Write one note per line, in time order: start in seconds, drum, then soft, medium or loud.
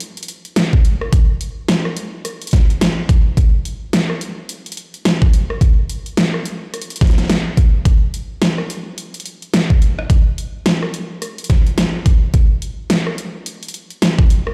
0.00 closed hi-hat medium
0.17 closed hi-hat soft
0.23 closed hi-hat medium
0.28 closed hi-hat medium
0.45 closed hi-hat soft
0.56 snare loud
0.56 closed hi-hat medium
0.73 kick loud
0.85 closed hi-hat medium
1.01 cross-stick medium
1.13 kick loud
1.13 closed hi-hat medium
1.41 closed hi-hat medium
1.69 snare loud
1.69 closed hi-hat medium
1.85 cross-stick medium
1.97 closed hi-hat medium
2.25 cross-stick soft
2.25 closed hi-hat medium
2.42 closed hi-hat soft
2.47 closed hi-hat medium
2.51 kick loud
2.51 snare medium
2.51 closed hi-hat soft
2.53 closed hi-hat medium
2.56 closed hi-hat soft
2.70 closed hi-hat soft
2.81 snare loud
2.81 closed hi-hat medium
3.09 kick loud
3.09 closed hi-hat medium
3.37 kick loud
3.37 closed hi-hat medium
3.65 closed hi-hat medium
3.93 snare loud
3.93 closed hi-hat medium
4.10 cross-stick soft
4.21 closed hi-hat medium
4.49 closed hi-hat medium
4.66 closed hi-hat soft
4.72 closed hi-hat medium
4.77 closed hi-hat medium
4.94 closed hi-hat soft
5.05 snare loud
5.05 closed hi-hat medium
5.22 kick loud
5.33 closed hi-hat medium
5.50 cross-stick soft
5.61 kick loud
5.61 closed hi-hat medium
5.89 closed hi-hat medium
6.06 closed hi-hat soft
6.17 snare loud
6.17 closed hi-hat medium
6.34 cross-stick soft
6.46 closed hi-hat medium
6.74 cross-stick soft
6.74 closed hi-hat medium
6.82 closed hi-hat medium
6.90 closed hi-hat soft
6.92 closed hi-hat soft
6.96 closed hi-hat medium
6.98 kick loud
6.98 closed hi-hat soft
7.02 snare medium
7.02 closed hi-hat soft
7.07 snare soft
7.07 closed hi-hat soft
7.11 closed hi-hat soft
7.18 snare soft
7.18 closed hi-hat soft
7.24 snare soft
7.30 snare loud
7.30 closed hi-hat medium
7.57 kick loud
7.57 closed hi-hat medium
7.85 kick loud
7.85 closed hi-hat medium
8.14 closed hi-hat medium
8.42 snare loud
8.42 closed hi-hat medium
8.58 cross-stick soft
8.70 closed hi-hat medium
8.98 closed hi-hat medium
9.14 closed hi-hat soft
9.20 closed hi-hat medium
9.26 closed hi-hat medium
9.42 closed hi-hat soft
9.54 snare loud
9.54 closed hi-hat medium
9.70 kick loud
9.82 closed hi-hat medium
9.99 cross-stick soft
10.10 kick loud
10.10 closed hi-hat medium
10.38 closed hi-hat medium
10.66 snare loud
10.66 closed hi-hat medium
10.83 cross-stick medium
10.94 closed hi-hat medium
11.22 cross-stick soft
11.22 closed hi-hat medium
11.38 closed hi-hat soft
11.44 closed hi-hat medium
11.50 kick loud
11.50 snare medium
11.50 closed hi-hat medium
11.67 closed hi-hat soft
11.78 snare loud
11.78 closed hi-hat medium
12.06 kick loud
12.06 closed hi-hat medium
12.34 kick loud
12.34 closed hi-hat medium
12.62 closed hi-hat medium
12.90 snare loud
12.90 closed hi-hat medium
13.07 cross-stick medium
13.18 closed hi-hat medium
13.46 closed hi-hat medium
13.63 closed hi-hat soft
13.68 closed hi-hat medium
13.74 closed hi-hat medium
13.90 closed hi-hat soft
14.02 snare loud
14.02 closed hi-hat medium
14.19 kick loud
14.30 closed hi-hat medium
14.47 cross-stick medium